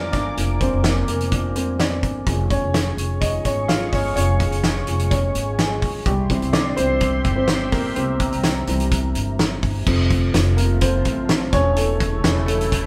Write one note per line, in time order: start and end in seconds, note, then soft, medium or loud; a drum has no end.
0.00 0.37 F3 medium
0.00 0.38 A#3 soft
0.00 0.62 C4 medium
0.00 0.14 D4 medium
0.00 2.28 E4 medium
0.00 2.28 F4 medium
0.00 2.23 A#4 medium
0.00 0.60 C5 medium
0.00 0.12 D5 medium
0.00 2.28 E5 medium
0.00 2.28 F5 medium
0.00 6.03 G#5 medium
0.00 2.23 D6 medium
0.12 0.35 G1 medium
0.12 0.37 D4 medium
0.12 0.61 D5 medium
0.12 kick medium
0.12 snare soft
0.12 closed hi-hat medium
0.37 0.70 F1 medium
0.37 1.30 F3 soft
0.37 0.84 A#3 soft
0.37 1.31 D4 medium
0.37 closed hi-hat medium
0.60 0.83 C4 medium
0.60 0.85 C5 medium
0.60 kick medium
0.60 closed hi-hat medium
0.73 1.06 F1 medium
0.84 1.07 A#3 medium
0.84 1.06 A#4 medium
0.84 snare loud
0.84 closed hi-hat medium
1.08 1.52 F1 medium
1.08 1.31 A#3 medium
1.08 1.57 A#4 medium
1.08 closed hi-hat medium
1.21 closed hi-hat medium
1.32 1.53 F3 soft
1.32 1.53 A#3 soft
1.32 1.53 D4 soft
1.32 kick medium
1.32 closed hi-hat medium
1.56 2.00 F2 medium
1.56 1.78 C4 medium
1.56 1.80 C5 medium
1.56 closed hi-hat medium
1.80 2.13 D4 medium
1.80 2.13 D5 medium
1.80 snare loud
1.80 closed hi-hat medium
2.03 2.25 G1 medium
2.03 kick medium
2.03 closed hi-hat soft
2.26 2.60 F1 medium
2.26 4.13 F3 soft
2.26 4.13 G#3 soft
2.26 2.51 C#4 medium
2.26 6.03 G#4 medium
2.26 6.03 C#6 medium
2.26 kick loud
2.26 closed hi-hat medium
2.50 3.19 C#4 medium
2.50 3.24 C#5 medium
2.50 kick medium
2.50 closed hi-hat medium
2.62 2.95 F1 medium
2.74 snare loud
2.74 closed hi-hat medium
2.97 3.42 F1 medium
2.97 closed hi-hat medium
3.21 3.44 D#4 medium
3.21 3.46 D#5 medium
3.21 kick medium
3.21 closed hi-hat medium
3.45 3.89 G#1 medium
3.45 3.68 C#4 medium
3.45 3.69 C#5 medium
3.45 kick medium
3.45 closed hi-hat medium
3.68 3.92 F4 medium
3.68 3.93 F5 medium
3.68 snare loud
3.68 closed hi-hat medium
3.93 4.15 G1 medium
3.93 4.16 C#4 medium
3.93 4.14 C#5 medium
3.93 kick medium
3.93 snare soft
3.93 open hi-hat medium
4.16 4.49 F1 loud
4.16 4.48 F3 medium
4.16 4.48 G#3 soft
4.16 4.49 C#4 medium
4.16 5.09 C#5 loud
4.16 closed hi-hat medium
4.40 kick medium
4.40 closed hi-hat medium
4.51 4.85 F1 medium
4.51 closed hi-hat soft
4.64 snare loud
4.64 closed hi-hat medium
4.87 5.32 F1 medium
4.87 5.09 F3 soft
4.87 5.10 G#3 soft
4.87 5.10 C#4 soft
4.87 closed hi-hat medium
5.00 closed hi-hat soft
5.10 5.56 C#4 medium
5.10 5.60 C#5 medium
5.10 kick medium
5.10 closed hi-hat medium
5.35 5.79 G#1 medium
5.35 closed hi-hat medium
5.59 6.04 G#3 medium
5.59 6.08 G#4 medium
5.59 snare loud
5.59 closed hi-hat medium
5.82 6.04 A#1 medium
5.82 kick medium
5.82 open hi-hat medium
6.05 6.39 C2 loud
6.05 6.29 G3 medium
6.05 9.82 G4 medium
6.05 6.55 G4 medium
6.05 9.82 E5 medium
6.05 7.94 C6 medium
6.05 kick loud
6.05 closed hi-hat medium
6.30 6.98 E3 medium
6.30 6.98 G3 soft
6.30 6.77 C4 medium
6.30 kick medium
6.30 closed hi-hat medium
6.42 6.75 C2 medium
6.42 closed hi-hat soft
6.53 6.70 D4 medium
6.53 6.67 D5 medium
6.53 snare loud
6.53 closed hi-hat medium
6.69 6.77 D5 medium
6.76 7.26 C2 medium
6.76 7.33 C4 medium
6.76 7.32 C5 loud
6.76 closed hi-hat medium
7.01 kick medium
7.01 closed hi-hat medium
7.25 7.69 G1 medium
7.25 kick medium
7.25 closed hi-hat medium
7.36 7.47 C4 medium
7.36 7.46 C5 medium
7.48 7.71 C4 medium
7.48 7.73 C5 medium
7.48 snare loud
7.48 closed hi-hat medium
7.72 7.95 A#1 medium
7.72 7.95 A#3 medium
7.72 7.97 A#4 medium
7.72 kick medium
7.72 snare soft
7.72 open hi-hat medium
7.96 8.30 C2 medium
7.96 8.68 C4 medium
7.96 9.35 C5 medium
7.96 9.84 A#5 medium
7.96 closed hi-hat medium
8.20 kick medium
8.20 closed hi-hat medium
8.32 8.65 C2 medium
8.32 closed hi-hat soft
8.44 snare loud
8.44 closed hi-hat medium
8.67 9.12 C2 medium
8.67 9.83 E3 medium
8.67 9.83 G3 soft
8.67 9.83 C4 medium
8.67 closed hi-hat medium
8.80 closed hi-hat soft
8.92 kick medium
8.92 closed hi-hat medium
9.15 9.59 G1 medium
9.15 closed hi-hat medium
9.39 snare loud
9.39 closed hi-hat medium
9.63 9.85 G1 medium
9.63 kick medium
9.63 open hi-hat soft
9.86 10.31 F1 loud
9.86 11.52 C3 medium
9.86 11.49 F3 medium
9.86 11.49 A3 soft
9.86 11.52 A3 medium
9.86 10.81 C4 medium
9.86 11.52 F4 medium
9.86 kick loud
9.86 crash medium
10.11 kick medium
10.11 closed hi-hat medium
10.34 11.05 F1 loud
10.34 snare loud
10.34 closed hi-hat medium
10.57 10.81 A#3 medium
10.57 10.80 A#4 medium
10.57 closed hi-hat medium
10.81 11.50 C4 medium
10.81 11.55 C5 medium
10.81 kick medium
10.81 closed hi-hat medium
11.05 11.50 A1 medium
11.05 kick medium
11.05 closed hi-hat medium
11.29 snare loud
11.29 closed hi-hat medium
11.53 12.20 E1 loud
11.53 12.86 C#3 medium
11.53 12.86 A3 medium
11.53 11.76 C#4 medium
11.53 12.86 E4 medium
11.53 11.77 C#5 loud
11.53 kick loud
11.53 snare soft
11.53 closed hi-hat medium
11.77 12.22 A3 medium
11.77 12.21 A4 medium
11.77 closed hi-hat medium
12.00 kick medium
12.00 closed hi-hat medium
12.24 12.86 E1 loud
12.24 12.86 E3 medium
12.24 12.47 A3 soft
12.24 12.86 C#4 medium
12.24 snare loud
12.24 closed hi-hat medium
12.46 12.86 A3 medium
12.46 12.86 A4 loud
12.46 closed hi-hat medium
12.61 closed hi-hat medium
12.72 kick medium
12.72 closed hi-hat medium